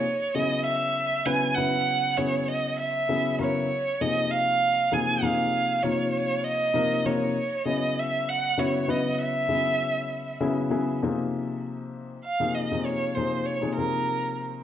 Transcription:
X:1
M:6/8
L:1/16
Q:3/8=66
K:Bbm
V:1 name="Violin"
d2 e2 _f4 a2 g2- | g2 d2 e2 _f4 d2- | d2 e2 f4 a2 f2- | f2 d2 d2 e4 d2- |
d2 e2 _f2 g2 d2 e2 | _f8 z4 | z8 f2 e2 | d2 c2 d2 B4 z2 |]
V:2 name="Grand piano"
z2 [D,G,_C_FA]6 [D,G,CF_c]2 [D,G,CFc]2- | [D,G,_C_F_c]2 [D,G,CFA]6 [D,G,CFA]2 [D,G,CFB]2 | z2 [C,F,B,EA]6 [C,F,B,EA]2 [C,F,B,EA]2- | [C,F,B,EA]2 [C,F,B,EF]6 [C,F,B,EB]2 [C,F,B,EB]2 |
z2 [D,G,_C_FA]6 [D,G,CFG]2 [D,G,CF_c]2- | [D,G,_C_F_c]2 [D,G,CFA]6 [D,G,CFA]2 [D,G,CFA]2 | [C,F,B,EA]6- [C,F,B,EA] z2 [C,F,B,EA]2 [C,F,B,EA]- | [C,F,B,EA]2 [C,F,B,EA]3 [C,F,B,EA] [C,F,B,EA]6 |]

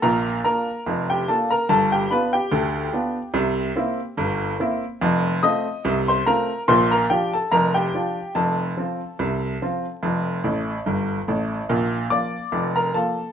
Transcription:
X:1
M:2/4
L:1/16
Q:"Swing 16ths" 1/4=72
K:Bb
V:1 name="Grand piano"
[Bb]2 [Bb]3 [Gg] [Aa] [Bb] | [Aa] [Gg] [=B=b] [Gg]4- [Gg]- | [Gg]6 z2 | z2 [ee']3 [cc'] [Bb]2 |
[cc'] [Bb] [Gg] [Aa] [Bb] [Gg]3 | [Aa]8- | [Aa]6 z2 | z2 [dd']3 [Bb] [Aa]2 |]
V:2 name="Grand piano" clef=bass
[B,,,B,,]2 [B,DF]2 [F,,,F,,]2 [B,DF]2 | [G,,,G,,]2 [=B,DF]2 [D,,D,]2 [B,DF]2 | [C,,C,]2 [B,C=E]2 [G,,,G,,]2 [B,CE]2 | [F,,,F,,]2 [A,CF]2 [C,,C,]2 [A,CF]2 |
[B,,,B,,]2 [F,DF]2 [F,,,F,,]2 [F,DF]2 | [F,,,F,,]2 [F,CF]2 [C,,C,]2 [F,CF]2 | [F,,,F,,]2 [A,,,A,,]2 [G,,,G,,]2 [A,,,A,,]2 | [B,,,B,,]2 [F,B,F]2 [F,,,F,,]2 [F,B,F]2 |]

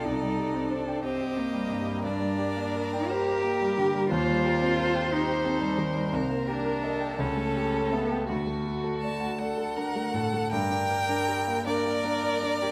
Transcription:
X:1
M:6/8
L:1/16
Q:3/8=57
K:Gm
V:1 name="Violin"
d6 e6 | d6 c2 B2 B2 | c2 B2 A2 G2 A2 B2 | c2 B2 A8 |
^F4 a2 ^f6 | g6 d6 |]
V:2 name="Violin"
A6 G6 | B12 | c12 | B6 A6 |
^F6 A2 B2 A2 | B6 B6 |]
V:3 name="Cello"
E4 D2 C2 B,4 | D6 G6 | F6 E6 | z2 D4 ^C4 =B,2 |
A,6 z6 | z6 B6 |]
V:4 name="Grand piano"
C,, G, G C c g c G C G, G,, G, | G,, G, G B, B g B G B, G, D, G, | E,, G, G C c g c G C G, E, G, | C,, B, G B e g ^C,, A, G A =e g |
D,, A, ^F A d ^f d A D A, A,, A, | G,, D B D G B, D B, D B D G |]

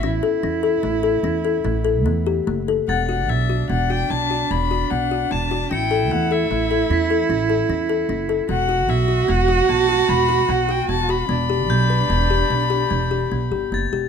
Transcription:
X:1
M:7/4
L:1/16
Q:1/4=150
K:Ador
V:1 name="Crotales"
z24 z4 | [K:Edor] a'4- a' z16 z3 e''4 | c''4- c'' z6 z b'4- b' z8 z3 | z24 z4 |
z4 g'4- g' z12 z3 a'4 |]
V:2 name="Violin"
z24 z4 | [K:Edor] f2 f2 e4 f2 g2 a4 b4 f4 a4 | g4 f2 e8 z12 z2 | f4 e4 f4 a4 b4 f2 g2 a2 b2- |
b24 z4 |]
V:3 name="Cello"
E24- E2 z2 | [K:Edor] D24- D4 | E24- E4 | F24- F4 |
D24- D2 z2 |]
V:4 name="Kalimba"
^C2 A2 C2 A2 A,2 A2 C2 A2 A,2 A2 A,2 G2 A,2 A2 | [K:Edor] B,2 F2 B,2 F2 B,2 F2 B,2 F2 B,2 F2 B,2 F2 B,2 F2 | C2 A2 A,2 A2 A,2 A2 C2 A2 C2 A2 C2 A2 C2 A2 | B,2 F2 B,2 F2 B,2 F2 B,2 F2 B,2 F2 B,2 F2 B,2 F2 |
B,2 G2 B,2 B2 B,2 G2 B,2 G2 B,2 G2 B,2 G2 B,2 G2 |]
V:5 name="Upright bass" clef=bass
A,,,2 z2 E,,4 A,,,4 E,,4 A,,,4 E,,4 F,,,4 | [K:Edor] E,,,4 B,,,4 E,,,4 B,,,4 E,,,4 B,,,4 E,,,4 | A,,,4 E,,4 A,,,4 E,,4 A,,,4 E,,4 F,,,4 | E,,,4 B,,,4 E,,,4 B,,,4 E,,,4 B,,,4 E,,,4 |
E,,,4 B,,,4 E,,,4 B,,,4 E,,,4 B,,,2 G,,,2 F,,,2 E,,,2 |]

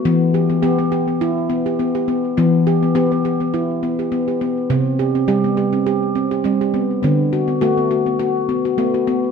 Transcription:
X:1
M:4/4
L:1/16
Q:"Swing 16ths" 1/4=103
K:Em
V:1 name="Handpan"
B,2 G B, G B, G B, E2 B, G z G B,2 | B,2 G B, G B, G B, E2 B, G B, G B,2 | C2 G C G B, G C G2 C G C G B,2 | B,2 F B, F B, F B, F2 B, F B, F B,2 |]
V:2 name="Handpan" clef=bass
E,4 B,8 B,4 | E,4 B,8 z4 | C,4 G,8 G,4 | D,4 A,8 A,4 |]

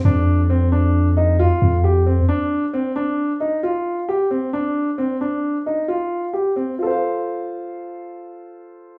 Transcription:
X:1
M:5/4
L:1/8
Q:1/4=134
K:Fmix
V:1 name="Grand piano"
D2 C D2 E F2 G C | D2 C D2 E F2 G C | D2 C D2 E F2 G C | [FAcf]8- [FAcf]2 |]
V:2 name="Sub bass" clef=bass
F,,6- F,, F,,3 | z8 z2 | z8 z2 | z8 z2 |]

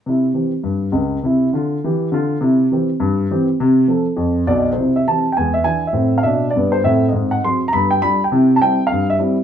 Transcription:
X:1
M:4/4
L:1/16
Q:"Swing" 1/4=203
K:C
V:1 name="Grand piano"
z16 | z16 | z16 | z12 d3 c- |
c2 e2 a3 g ^g2 e2 g3 e- | e3 f e3 d3 c2 e3 _e- | _e2 _g2 c'3 _b =b2 =g2 b3 g- | g3 a g3 f3 e2 z4 |]
V:2 name="Grand piano" clef=bass
[C,E]4 [E,CG]4 G,,4 [_D,,_D,]4 | [C,E]4 [D,F]4 [E,G]4 [D,F]4 | [C,E]4 [E,CG]4 G,,4 [E,CG]4 | C,4 [F,CA]4 F,,4 [B,,,B,,]4 |
[C,E]4 [E,CG]4 [E,,^G,]4 [E,DE]4 | [A,,C]4 [B,,D]4 [G,,B,]4 [A,,C]4 | [_A,,C]4 [_G,C_A]4 [=G,,B,]4 [=G,DF]4 | [C,E]4 [G,CE]4 G,,4 [G,CE]4 |]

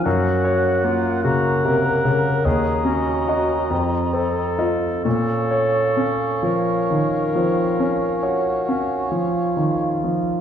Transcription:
X:1
M:12/8
L:1/8
Q:3/8=45
K:Bbm
V:1 name="Flute"
g3 b3 b4- b z | f8- f3 z |]
V:2 name="Cor anglais"
g3 g3 e4- e z | d8- d3 z |]
V:3 name="Clarinet"
G2 F G B2 A G2 F =A2 | =A3 B6 z3 |]
V:4 name="Bassoon"
B,6 D3 C2 z | D3 D2 C D G2 F3 |]
V:5 name="Grand piano" clef=bass
G,, d B, D, C, D, E,, D [Ge] F,, C [Fe] | B,, d D F, E, F, D d D F, E, F, |]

